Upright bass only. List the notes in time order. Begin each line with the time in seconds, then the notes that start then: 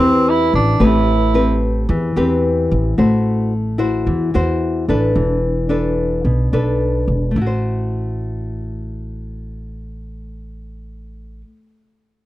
0.00 E2
0.54 A1
0.80 A1
1.89 E2
2.16 E2
2.71 A1
2.99 A1
4.07 E2
4.35 E2
4.88 A1
5.15 E1
6.25 B1
6.53 B1
7.08 E1
7.36 A1